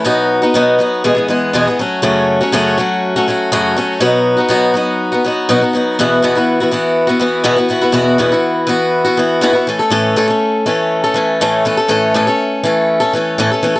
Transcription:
\new Staff \with { instrumentName = "Steel-string acoustic guitar" } { \time 4/4 \key e \major \tempo 4 = 122 <b, fis b dis' fis'>8. <b dis' fis'>16 <b, fis b dis' fis'>8 <fis b dis' fis'>8 <e, b, e gis b gis'>16 <e gis b gis'>16 <e gis b gis'>8 <e, b, e gis b gis'>16 <e b gis'>16 <fis a cis' fis'>8 | <fis, cis fis a cis' fis'>8. <fis a cis' fis'>16 <fis, cis fis a cis' fis'>8 <fis a cis' fis'>8. <fis a cis' fis'>16 <fis a cis' fis'>8 <fis, cis fis a cis' fis'>8 <fis a cis' fis'>8 | <b, fis b dis' fis'>8. <b dis' fis'>16 <b, fis b dis' fis'>8 <fis b dis' fis'>8. <b dis' fis'>16 <fis b dis' fis'>8 <b, fis b dis' fis'>16 <b dis' fis'>16 <fis b dis' fis'>8 | <e, b, e b e' fis'>8 <e, b, e b e' fis'>16 <e b e' fis'>8 <e b e' fis'>16 <e b e' fis'>8. <e b e' fis'>16 <e b e' fis'>8 <e, b, e b e' fis'>16 <e b e' fis'>16 <e b e' fis'>16 <e b e' fis'>16 |
<e, b, e b e' fis'>8 <e, b, e b e' fis'>16 <e b e' fis'>8. <e b e' fis'>8. <e b e' fis'>16 <e b e' fis'>8 <e, b, e b e' fis'>16 <e b e' fis'>16 <e a cis' a'>16 <a cis' a'>16 | <a, e a cis' a'>8 <a, e a cis' a'>16 <a cis' a'>8. <e a cis' a'>8. <a cis' a'>16 <e a cis' a'>8 <a, e a cis' a'>8 <e a cis' a'>16 <a cis' a'>16 | <a, e a cis' a'>8 <a, e a cis' a'>16 <a cis' a'>8. <e a cis' a'>8. <a cis' a'>16 <e a cis' a'>8 <a, e a cis' a'>16 <a cis' a'>16 <e a cis' a'>16 a'16 | }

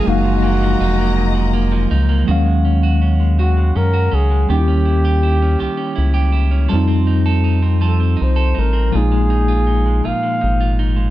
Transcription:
<<
  \new Staff \with { instrumentName = "String section" } { \time 6/8 \key dis \minor \tempo 4. = 54 <gis' dis'' eis'' ais''>2. | r2. | r2. | r2. |
r2. | }
  \new Staff \with { instrumentName = "Flugelhorn" } { \time 6/8 \key dis \minor fis'2~ fis'8 r8 | r4. fis'8 ais'8 gis'8 | g'2~ g'8 r8 | r4. a'8 c''8 ais'8 |
gis'4. eis''4 r8 | }
  \new Staff \with { instrumentName = "Clean electric guitar" } { \time 6/8 \key dis \minor fis,16 eis16 ais16 eis16 dis'16 ais16 fis,16 eis16 ais16 eis16 dis'16 ais16 | <dis fis'>16 gis16 cis'16 fis'16 cis'16 gis16 <dis fis'>16 gis16 cis'16 fis'16 cis'16 gis16 | <dis g'>16 cis'16 e'16 g'16 e'16 cis'16 <dis g'>16 cis'16 e'16 g'16 e'16 cis'16 | <f a'>16 c'16 ees'16 a'16 ees'16 c'16 <f a'>16 c'16 ees'16 a'16 ees'16 c'16 |
<ais, eis'>16 gis16 dis'16 eis'16 dis'16 gis16 <ais, eis'>16 gis16 dis'16 eis'16 dis'16 gis16 | }
  \new Staff \with { instrumentName = "Tine electric piano" } { \time 6/8 \key dis \minor <gis ais dis' eis''>2. | <eis fis gis cis' eis''>2. | <g ais cis' dis' e'>2. | <f g c' ees'>2. |
<eis gis ais dis'>2. | }
  \new Staff \with { instrumentName = "Analog synth bass" } { \clef bass \time 6/8 \key dis \minor fis,,4 eis,,4. cis,8 | dis,2 fis,8 cis,8 | dis,4. cis,8 cis,4 | f,2 c,8 a,,8 |
ais,,4. gis,,8 gis,,4 | }
>>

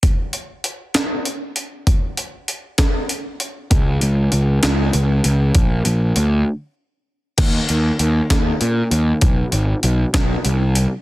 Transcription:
<<
  \new Staff \with { instrumentName = "Picked electric bass" } { \clef bass \time 6/8 \key bes \phrygian \tempo 4. = 65 r2. | r2. | des,8 des,8 des,8 des,8 des,8 des,8 | bes,,8 bes,,8 d,8 r4. |
ees,8 ees,8 ees,8 ees,8 bes,8 ees,8 | ces,8 aes,,8 ces,8 ces,8 c,4 | }
  \new DrumStaff \with { instrumentName = "Drums" } \drummode { \time 6/8 <hh bd>8 hh8 hh8 <hh sn>8 hh8 hh8 | <hh bd>8 hh8 hh8 <hh bd sn>8 hh8 hh8 | <hh bd>8 hh8 hh8 <hh sn>8 hh8 hh8 | <hh bd>8 hh8 hh8 r4. |
<cymc hh bd>8 hh8 hh8 <hh bd sn>8 hh8 hh8 | <hh bd>8 hh8 hh8 <hh bd sn>8 hh8 hh8 | }
>>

